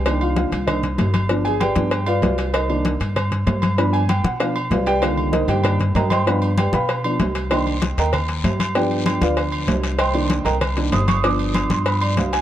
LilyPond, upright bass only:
\new Staff \with { instrumentName = "Upright bass" } { \clef bass \time 4/4 \key c \minor \tempo 4 = 193 c,4. c,4. g,,4~ | g,,4. g,4. c,4~ | c,4. g,4. g,4~ | g,4. b,4. c,4~ |
c,4. g,4. g,4~ | g,4. b,4. c,4~ | c,4. ees,4. g,4~ | g,4. d,4. c,4~ |
c,4. c,4. g,,4~ | g,,4. g,4. c,4 | }